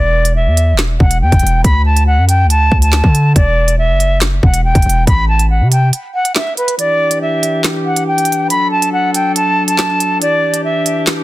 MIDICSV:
0, 0, Header, 1, 5, 480
1, 0, Start_track
1, 0, Key_signature, 1, "minor"
1, 0, Tempo, 428571
1, 1841, Time_signature, 4, 2, 24, 8
1, 12583, End_track
2, 0, Start_track
2, 0, Title_t, "Flute"
2, 0, Program_c, 0, 73
2, 0, Note_on_c, 0, 74, 104
2, 373, Note_off_c, 0, 74, 0
2, 402, Note_on_c, 0, 76, 76
2, 853, Note_off_c, 0, 76, 0
2, 1120, Note_on_c, 0, 78, 80
2, 1321, Note_off_c, 0, 78, 0
2, 1361, Note_on_c, 0, 79, 88
2, 1813, Note_off_c, 0, 79, 0
2, 1839, Note_on_c, 0, 83, 88
2, 2041, Note_off_c, 0, 83, 0
2, 2083, Note_on_c, 0, 81, 78
2, 2283, Note_off_c, 0, 81, 0
2, 2318, Note_on_c, 0, 78, 85
2, 2520, Note_off_c, 0, 78, 0
2, 2562, Note_on_c, 0, 79, 84
2, 2762, Note_off_c, 0, 79, 0
2, 2804, Note_on_c, 0, 81, 88
2, 3142, Note_off_c, 0, 81, 0
2, 3162, Note_on_c, 0, 81, 85
2, 3726, Note_off_c, 0, 81, 0
2, 3761, Note_on_c, 0, 74, 109
2, 4213, Note_off_c, 0, 74, 0
2, 4240, Note_on_c, 0, 76, 91
2, 4692, Note_off_c, 0, 76, 0
2, 4965, Note_on_c, 0, 78, 81
2, 5164, Note_off_c, 0, 78, 0
2, 5202, Note_on_c, 0, 79, 84
2, 5653, Note_off_c, 0, 79, 0
2, 5682, Note_on_c, 0, 83, 98
2, 5882, Note_off_c, 0, 83, 0
2, 5921, Note_on_c, 0, 81, 81
2, 6122, Note_off_c, 0, 81, 0
2, 6162, Note_on_c, 0, 78, 69
2, 6362, Note_off_c, 0, 78, 0
2, 6401, Note_on_c, 0, 79, 86
2, 6602, Note_off_c, 0, 79, 0
2, 6883, Note_on_c, 0, 78, 84
2, 7083, Note_off_c, 0, 78, 0
2, 7117, Note_on_c, 0, 76, 82
2, 7320, Note_off_c, 0, 76, 0
2, 7363, Note_on_c, 0, 71, 75
2, 7563, Note_off_c, 0, 71, 0
2, 7602, Note_on_c, 0, 74, 109
2, 8053, Note_off_c, 0, 74, 0
2, 8083, Note_on_c, 0, 76, 77
2, 8534, Note_off_c, 0, 76, 0
2, 8800, Note_on_c, 0, 78, 79
2, 9001, Note_off_c, 0, 78, 0
2, 9042, Note_on_c, 0, 79, 88
2, 9493, Note_off_c, 0, 79, 0
2, 9520, Note_on_c, 0, 83, 91
2, 9721, Note_off_c, 0, 83, 0
2, 9761, Note_on_c, 0, 81, 79
2, 9962, Note_off_c, 0, 81, 0
2, 9999, Note_on_c, 0, 78, 84
2, 10201, Note_off_c, 0, 78, 0
2, 10242, Note_on_c, 0, 79, 82
2, 10442, Note_off_c, 0, 79, 0
2, 10484, Note_on_c, 0, 81, 88
2, 10821, Note_off_c, 0, 81, 0
2, 10843, Note_on_c, 0, 81, 88
2, 11407, Note_off_c, 0, 81, 0
2, 11442, Note_on_c, 0, 74, 111
2, 11893, Note_off_c, 0, 74, 0
2, 11919, Note_on_c, 0, 76, 91
2, 12372, Note_off_c, 0, 76, 0
2, 12583, End_track
3, 0, Start_track
3, 0, Title_t, "Brass ensemble"
3, 0, Program_c, 1, 61
3, 7601, Note_on_c, 1, 52, 79
3, 7602, Note_on_c, 1, 62, 72
3, 7602, Note_on_c, 1, 67, 84
3, 9502, Note_off_c, 1, 52, 0
3, 9503, Note_off_c, 1, 67, 0
3, 9522, Note_on_c, 1, 54, 80
3, 9522, Note_on_c, 1, 69, 87
3, 11423, Note_off_c, 1, 54, 0
3, 11423, Note_off_c, 1, 69, 0
3, 11441, Note_on_c, 1, 67, 85
3, 11442, Note_on_c, 1, 52, 79
3, 12583, Note_off_c, 1, 52, 0
3, 12583, Note_off_c, 1, 62, 0
3, 12583, Note_off_c, 1, 67, 0
3, 12583, End_track
4, 0, Start_track
4, 0, Title_t, "808-style bass"
4, 0, Program_c, 2, 38
4, 0, Note_on_c, 2, 28, 106
4, 521, Note_on_c, 2, 40, 97
4, 538, Note_off_c, 2, 28, 0
4, 821, Note_on_c, 2, 28, 94
4, 838, Note_off_c, 2, 40, 0
4, 1106, Note_off_c, 2, 28, 0
4, 1122, Note_on_c, 2, 28, 108
4, 1362, Note_on_c, 2, 40, 94
4, 1379, Note_off_c, 2, 28, 0
4, 1476, Note_off_c, 2, 40, 0
4, 1481, Note_on_c, 2, 28, 103
4, 1597, Note_off_c, 2, 28, 0
4, 1602, Note_on_c, 2, 28, 109
4, 1832, Note_off_c, 2, 28, 0
4, 1842, Note_on_c, 2, 38, 105
4, 2442, Note_on_c, 2, 42, 100
4, 2459, Note_off_c, 2, 38, 0
4, 2742, Note_on_c, 2, 38, 102
4, 2759, Note_off_c, 2, 42, 0
4, 3027, Note_off_c, 2, 38, 0
4, 3042, Note_on_c, 2, 38, 105
4, 3388, Note_off_c, 2, 38, 0
4, 3401, Note_on_c, 2, 50, 102
4, 3747, Note_off_c, 2, 50, 0
4, 3762, Note_on_c, 2, 28, 102
4, 4362, Note_on_c, 2, 30, 103
4, 4379, Note_off_c, 2, 28, 0
4, 4932, Note_off_c, 2, 30, 0
4, 4962, Note_on_c, 2, 28, 105
4, 5308, Note_off_c, 2, 28, 0
4, 5321, Note_on_c, 2, 28, 105
4, 5437, Note_off_c, 2, 28, 0
4, 5442, Note_on_c, 2, 28, 106
4, 5672, Note_off_c, 2, 28, 0
4, 5682, Note_on_c, 2, 33, 101
4, 6281, Note_on_c, 2, 48, 100
4, 6298, Note_off_c, 2, 33, 0
4, 6624, Note_off_c, 2, 48, 0
4, 12583, End_track
5, 0, Start_track
5, 0, Title_t, "Drums"
5, 280, Note_on_c, 9, 42, 70
5, 392, Note_off_c, 9, 42, 0
5, 641, Note_on_c, 9, 42, 74
5, 753, Note_off_c, 9, 42, 0
5, 879, Note_on_c, 9, 39, 98
5, 881, Note_on_c, 9, 38, 119
5, 881, Note_on_c, 9, 42, 81
5, 991, Note_off_c, 9, 39, 0
5, 993, Note_off_c, 9, 38, 0
5, 993, Note_off_c, 9, 42, 0
5, 1122, Note_on_c, 9, 36, 97
5, 1234, Note_off_c, 9, 36, 0
5, 1240, Note_on_c, 9, 42, 85
5, 1352, Note_off_c, 9, 42, 0
5, 1481, Note_on_c, 9, 36, 100
5, 1481, Note_on_c, 9, 42, 44
5, 1562, Note_off_c, 9, 42, 0
5, 1562, Note_on_c, 9, 42, 60
5, 1593, Note_off_c, 9, 36, 0
5, 1641, Note_off_c, 9, 42, 0
5, 1641, Note_on_c, 9, 42, 74
5, 1753, Note_off_c, 9, 42, 0
5, 1842, Note_on_c, 9, 36, 117
5, 1842, Note_on_c, 9, 42, 87
5, 1954, Note_off_c, 9, 36, 0
5, 1954, Note_off_c, 9, 42, 0
5, 2201, Note_on_c, 9, 42, 73
5, 2313, Note_off_c, 9, 42, 0
5, 2561, Note_on_c, 9, 42, 78
5, 2673, Note_off_c, 9, 42, 0
5, 2801, Note_on_c, 9, 42, 82
5, 2913, Note_off_c, 9, 42, 0
5, 3042, Note_on_c, 9, 36, 93
5, 3154, Note_off_c, 9, 36, 0
5, 3160, Note_on_c, 9, 42, 85
5, 3272, Note_off_c, 9, 42, 0
5, 3278, Note_on_c, 9, 39, 92
5, 3280, Note_on_c, 9, 38, 111
5, 3390, Note_off_c, 9, 39, 0
5, 3392, Note_off_c, 9, 38, 0
5, 3401, Note_on_c, 9, 36, 96
5, 3513, Note_off_c, 9, 36, 0
5, 3524, Note_on_c, 9, 42, 75
5, 3636, Note_off_c, 9, 42, 0
5, 3762, Note_on_c, 9, 36, 116
5, 3762, Note_on_c, 9, 42, 85
5, 3874, Note_off_c, 9, 36, 0
5, 3874, Note_off_c, 9, 42, 0
5, 4121, Note_on_c, 9, 42, 71
5, 4233, Note_off_c, 9, 42, 0
5, 4481, Note_on_c, 9, 42, 75
5, 4593, Note_off_c, 9, 42, 0
5, 4719, Note_on_c, 9, 39, 97
5, 4721, Note_on_c, 9, 38, 125
5, 4722, Note_on_c, 9, 42, 78
5, 4831, Note_off_c, 9, 39, 0
5, 4833, Note_off_c, 9, 38, 0
5, 4834, Note_off_c, 9, 42, 0
5, 4962, Note_on_c, 9, 36, 94
5, 5074, Note_off_c, 9, 36, 0
5, 5080, Note_on_c, 9, 42, 83
5, 5192, Note_off_c, 9, 42, 0
5, 5322, Note_on_c, 9, 36, 100
5, 5322, Note_on_c, 9, 42, 46
5, 5403, Note_off_c, 9, 42, 0
5, 5403, Note_on_c, 9, 42, 59
5, 5434, Note_off_c, 9, 36, 0
5, 5482, Note_off_c, 9, 42, 0
5, 5482, Note_on_c, 9, 42, 70
5, 5594, Note_off_c, 9, 42, 0
5, 5682, Note_on_c, 9, 36, 121
5, 5682, Note_on_c, 9, 42, 87
5, 5794, Note_off_c, 9, 36, 0
5, 5794, Note_off_c, 9, 42, 0
5, 6041, Note_on_c, 9, 42, 70
5, 6153, Note_off_c, 9, 42, 0
5, 6402, Note_on_c, 9, 42, 79
5, 6514, Note_off_c, 9, 42, 0
5, 6642, Note_on_c, 9, 42, 80
5, 6754, Note_off_c, 9, 42, 0
5, 7000, Note_on_c, 9, 42, 84
5, 7112, Note_off_c, 9, 42, 0
5, 7119, Note_on_c, 9, 39, 92
5, 7121, Note_on_c, 9, 38, 118
5, 7231, Note_off_c, 9, 39, 0
5, 7233, Note_off_c, 9, 38, 0
5, 7362, Note_on_c, 9, 42, 45
5, 7474, Note_off_c, 9, 42, 0
5, 7482, Note_on_c, 9, 42, 80
5, 7594, Note_off_c, 9, 42, 0
5, 7602, Note_on_c, 9, 42, 82
5, 7714, Note_off_c, 9, 42, 0
5, 7962, Note_on_c, 9, 42, 72
5, 8074, Note_off_c, 9, 42, 0
5, 8321, Note_on_c, 9, 42, 76
5, 8433, Note_off_c, 9, 42, 0
5, 8559, Note_on_c, 9, 39, 98
5, 8561, Note_on_c, 9, 38, 121
5, 8561, Note_on_c, 9, 42, 81
5, 8671, Note_off_c, 9, 39, 0
5, 8673, Note_off_c, 9, 38, 0
5, 8673, Note_off_c, 9, 42, 0
5, 8920, Note_on_c, 9, 42, 83
5, 9032, Note_off_c, 9, 42, 0
5, 9162, Note_on_c, 9, 42, 43
5, 9242, Note_off_c, 9, 42, 0
5, 9242, Note_on_c, 9, 42, 59
5, 9322, Note_off_c, 9, 42, 0
5, 9322, Note_on_c, 9, 42, 73
5, 9434, Note_off_c, 9, 42, 0
5, 9522, Note_on_c, 9, 42, 87
5, 9634, Note_off_c, 9, 42, 0
5, 9882, Note_on_c, 9, 42, 72
5, 9994, Note_off_c, 9, 42, 0
5, 10242, Note_on_c, 9, 42, 75
5, 10354, Note_off_c, 9, 42, 0
5, 10482, Note_on_c, 9, 42, 83
5, 10594, Note_off_c, 9, 42, 0
5, 10840, Note_on_c, 9, 42, 83
5, 10952, Note_off_c, 9, 42, 0
5, 10959, Note_on_c, 9, 39, 93
5, 10961, Note_on_c, 9, 38, 118
5, 11071, Note_off_c, 9, 39, 0
5, 11073, Note_off_c, 9, 38, 0
5, 11204, Note_on_c, 9, 42, 74
5, 11316, Note_off_c, 9, 42, 0
5, 11442, Note_on_c, 9, 42, 85
5, 11554, Note_off_c, 9, 42, 0
5, 11801, Note_on_c, 9, 42, 72
5, 11913, Note_off_c, 9, 42, 0
5, 12161, Note_on_c, 9, 42, 75
5, 12273, Note_off_c, 9, 42, 0
5, 12399, Note_on_c, 9, 39, 102
5, 12401, Note_on_c, 9, 38, 126
5, 12401, Note_on_c, 9, 42, 81
5, 12511, Note_off_c, 9, 39, 0
5, 12513, Note_off_c, 9, 38, 0
5, 12513, Note_off_c, 9, 42, 0
5, 12583, End_track
0, 0, End_of_file